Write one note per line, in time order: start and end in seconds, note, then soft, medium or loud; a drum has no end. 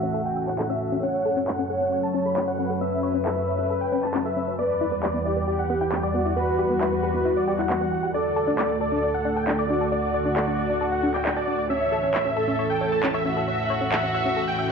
0.00 1.00 A2 medium
0.00 1.00 E3 medium
0.00 4.55 C#4 medium
0.00 0.06 C#4 medium
0.00 0.94 F#4 loud
0.00 4.55 A4 medium
0.00 0.20 E5 medium
0.00 1.00 E5 medium
0.14 0.21 A4 medium
0.25 0.44 G5 medium
0.36 0.41 E5 medium
0.48 0.52 C#5 medium
0.48 0.66 F#5 medium
0.48 clap soft
0.59 0.66 A4 loud
0.59 clap loud
0.70 0.73 C#4 medium
0.70 0.98 E5 medium
0.81 0.88 A5 medium
0.92 0.97 C#4 medium
1.03 4.55 F#2 medium
1.03 4.55 F#3 medium
1.03 1.06 C#4 medium
1.03 1.61 C#5 medium
1.03 4.55 C#5 medium
1.03 1.40 F#5 loud
1.25 1.30 A4 medium
1.37 1.44 C#4 loud
1.48 1.52 C#5 medium
1.48 1.66 F#5 medium
1.48 clap loud
1.59 1.63 C#4 medium
1.70 1.75 A4 medium
1.70 2.50 C#5 medium
1.70 1.98 F#5 medium
1.81 1.88 C#4 medium
1.92 1.99 C#5 medium
2.03 2.22 A5 medium
2.14 2.19 C#4 loud
2.25 2.28 A4 medium
2.25 2.44 B5 medium
2.37 2.41 C#4 loud
2.37 clap loud
2.48 2.52 C#5 loud
2.48 2.76 F#5 medium
2.59 2.63 C#4 medium
2.59 4.50 B4 loud
2.70 2.77 A4 medium
2.81 2.84 C#4 medium
2.81 3.18 E5 loud
3.03 3.08 C#5 loud
3.14 3.17 C#4 medium
3.25 3.32 A4 medium
3.25 3.44 E5 medium
3.25 clap loud
3.37 3.39 C#4 medium
3.48 3.52 C#5 medium
3.48 3.76 E5 medium
3.59 3.62 C#4 medium
3.70 3.77 A4 medium
3.81 4.00 G5 medium
3.92 3.97 C#4 loud
4.03 4.08 C#5 medium
4.03 4.22 A5 medium
4.03 clap soft
4.14 4.21 C#4 loud
4.14 clap loud
4.25 4.28 A4 medium
4.25 4.53 E5 medium
4.36 4.41 C#4 medium
4.48 4.52 C#5 medium
4.59 8.11 E2 medium
4.59 8.11 E3 medium
4.59 8.11 G3 medium
4.59 4.62 B3 medium
4.59 5.17 B4 loud
4.59 4.96 D5 loud
4.59 8.11 D5 medium
4.59 11.66 F#5 medium
4.81 4.86 E4 loud
4.92 4.99 B3 loud
5.03 5.08 G4 medium
5.03 5.22 D5 medium
5.03 clap loud
5.14 5.19 B3 medium
5.25 5.30 E4 medium
5.25 6.05 G4 medium
5.25 5.53 D5 medium
5.36 5.44 B3 medium
5.47 5.55 G4 medium
5.59 5.77 F#5 medium
5.70 5.75 B3 loud
5.81 5.84 E4 medium
5.81 6.00 G5 medium
5.92 5.97 B3 loud
5.92 clap loud
6.03 6.08 G4 loud
6.03 6.31 D5 medium
6.14 6.19 B3 medium
6.14 8.05 F#4 loud
6.25 6.32 E4 medium
6.36 6.39 B3 medium
6.36 6.74 B4 medium
6.59 6.63 G4 loud
6.70 6.73 B3 medium
6.81 6.88 E4 medium
6.81 7.00 B4 medium
6.81 clap loud
6.92 6.95 B3 medium
7.03 7.08 G4 medium
7.03 7.31 B4 medium
7.14 7.17 B3 medium
7.25 7.32 E4 medium
7.37 7.55 D5 medium
7.48 7.55 G4 medium
7.59 7.66 E4 medium
7.59 7.77 F#5 medium
7.59 clap soft
7.70 7.74 B3 medium
7.70 clap loud
7.81 7.86 B3 medium
7.81 8.09 F#5 medium
7.92 7.97 G4 medium
8.03 8.08 G4 medium
8.14 11.66 D2 medium
8.14 11.66 D3 medium
8.14 11.66 A3 medium
8.14 8.17 D4 medium
8.14 14.72 A4 medium
8.14 8.72 A4 medium
8.14 8.52 D5 medium
8.36 8.41 A4 loud
8.47 8.55 D4 loud
8.59 8.63 D5 medium
8.59 8.77 D5 medium
8.59 clap loud
8.70 8.74 D4 medium
8.81 8.86 A4 medium
8.81 9.61 A4 medium
8.81 9.09 D5 medium
8.92 8.99 D4 medium
9.03 9.10 D5 medium
9.14 9.33 F#5 medium
9.25 9.30 D4 loud
9.36 9.39 A4 medium
9.36 9.55 G5 medium
9.48 9.52 D4 loud
9.48 clap loud
9.59 9.63 D5 medium
9.59 9.87 D5 medium
9.70 9.74 D4 medium
9.70 11.61 F#4 medium
9.81 9.88 A4 medium
9.92 9.95 D4 medium
9.92 10.29 D5 medium
10.14 10.19 D5 loud
10.25 10.28 D4 medium
10.36 10.44 A4 medium
10.36 10.55 D5 medium
10.36 clap loud
10.48 10.50 D4 medium
10.59 10.63 D5 medium
10.59 10.87 D5 medium
10.70 10.73 D4 medium
10.81 10.88 A4 medium
10.92 11.11 F#5 medium
11.03 11.08 D4 loud
11.14 11.19 D5 medium
11.14 11.33 G5 medium
11.14 clap soft
11.25 11.32 D4 loud
11.25 clap loud
11.36 11.39 A4 medium
11.36 11.64 D5 medium
11.48 11.52 D4 medium
11.59 11.63 D5 medium
11.70 14.72 A2 medium
11.70 14.72 E3 medium
11.70 14.72 C#4 medium
11.70 11.73 C#4 medium
11.70 12.28 C#5 loud
11.70 14.72 E5 medium
11.70 12.07 E5 loud
11.92 11.97 A4 loud
12.03 12.10 C#4 medium
12.14 12.19 C#5 medium
12.14 12.33 E5 medium
12.14 clap loud
12.25 12.30 C#4 medium
12.37 13.17 A4 medium
12.37 12.41 A4 medium
12.37 12.64 E5 medium
12.48 12.55 C#4 medium
12.59 12.66 C#5 medium
12.70 12.88 G5 medium
12.81 12.86 C#4 loud
12.92 12.95 A4 medium
12.92 13.11 A5 medium
13.03 13.08 C#4 loud
13.03 clap loud
13.14 13.19 C#5 medium
13.14 13.42 E5 medium
13.25 13.30 C#4 medium
13.25 14.72 F#4 loud
13.37 13.44 A4 medium
13.48 13.50 C#4 medium
13.48 13.85 E5 loud
13.70 13.75 C#5 loud
13.81 13.84 C#4 medium
13.92 13.99 A4 loud
13.92 14.11 E5 medium
13.92 clap loud
14.03 14.06 C#4 medium
14.14 14.19 C#5 medium
14.14 14.42 E5 medium
14.25 14.28 C#4 medium
14.36 14.44 A4 medium
14.48 14.66 G5 medium
14.59 14.63 E5 medium